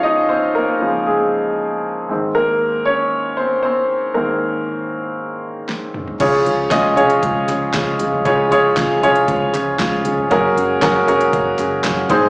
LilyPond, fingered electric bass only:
\new Staff \with { instrumentName = "Fingered electric bass" } { \clef bass \time 4/4 \key des \major \tempo 4 = 117 r1 | r1 | r1 | des,8 des,8 des,8 c,8 des,8 des,8 des,8 des,8 |
des,8 des,8 des,8 c,8 des,8 des,8 des,8 des,8 | ges,,8 ges,,8 ges,,8 f,,8 ges,,8 ges,,8 ges,,8 aes,,8 | }